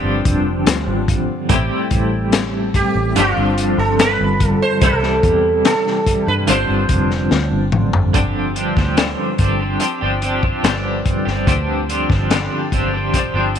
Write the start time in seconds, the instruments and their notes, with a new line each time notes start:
Already playing: clean electric guitar G2 D3 F3 C4 D4 G4, sitar C5
0.03 fingered electric bass G1
0.25 fingered electric bass F1, kick, closed hi-hat
0.66 fingered electric bass D2, snare, closed hi-hat
0.87 fingered electric bass G#1
1.08 kick, closed hi-hat
1.49 fingered electric bass A1, clean electric guitar A2 G3 C4 E4 G4, kick, closed hi-hat
1.91 fingered electric bass A1, kick, closed hi-hat
2.32 snare, closed hi-hat
2.74 sitar G4, kick, closed hi-hat
2.95 fingered electric bass A1
3.16 fingered electric bass G1, clean electric guitar G2 D3 F3 C4 D4 G4, sitar F4, closed hi-hat
3.37 fingered electric bass G1
3.58 closed hi-hat
3.78 fingered electric bass G1, sitar A4
3.99 sitar B4, snare, closed hi-hat
4.20 fingered electric bass G1
4.40 kick, closed hi-hat
4.49 sitar A4
4.62 sitar C5
4.81 fingered electric bass C2, clean electric guitar C3 E3 G3 E4 A4, sitar A4, kick, closed hi-hat
5.03 snare
5.23 fingered electric bass E2, kick, closed hi-hat
5.65 sitar A4, snare, closed hi-hat
5.87 snare
6.06 kick, closed hi-hat
6.27 fingered electric bass G2, sitar B4
6.47 fingered electric bass G1, clean electric guitar G2 D3 F3 C4 D4 G4, sitar C5, closed hi-hat
6.69 fingered electric bass G1
6.89 fingered electric bass F1, kick, closed hi-hat
7.11 snare
7.31 fingered electric bass D2, snare
7.52 fingered electric bass G1
7.72 fingered electric bass A1, mid tom
7.93 fingered electric bass G1, floor tom
8.13 fingered electric bass G1, clean electric guitar G2 D3 F3 C4 D4 G4, kick, closed hi-hat
8.54 clean electric guitar F3 C4 D4 G4, closed hi-hat
8.76 fingered electric bass D2, clean electric guitar F3 C4 D4 G4, kick, snare
8.97 clean electric guitar G2 D3 F3 C4 D4 G4, snare, closed hi-hat
9.38 fingered electric bass G1, clean electric guitar F3 C4 D4 G4, kick, closed hi-hat
9.59 clean electric guitar F3 C4 D4 G4
9.80 clean electric guitar F3 C4 D4 G4, closed hi-hat
10.01 fingered electric bass G1, clean electric guitar F3 C4 D4 G4
10.22 clean electric guitar F3 C4 D4 G4, closed hi-hat
10.42 clean electric guitar F3 C4 D4 G4, kick
10.63 fingered electric bass G1, clean electric guitar G2 D3 F3 C4 D4 G4, snare, closed hi-hat
11.05 kick, closed hi-hat
11.25 fingered electric bass G1, clean electric guitar F3 C4 D4 G4, snare
11.47 fingered electric bass D2, clean electric guitar G2 D3 F3 C4 D4 G4, kick, closed hi-hat
11.89 clean electric guitar F3 C4 D4 G4, closed hi-hat
12.09 fingered electric bass G1, clean electric guitar F3 C4 D4 G4, kick, snare
12.30 clean electric guitar G2 D3 F3 C4 D4 G4, snare, closed hi-hat
12.72 fingered electric bass G1, clean electric guitar F3 C4 D4 G4, kick, closed hi-hat
12.93 clean electric guitar F3 C4 D4 G4
13.14 clean electric guitar F3 C4 D4 G4, kick, closed hi-hat
13.34 fingered electric bass G1, clean electric guitar F3 C4 D4 G4
13.54 clean electric guitar F3 C4, closed hi-hat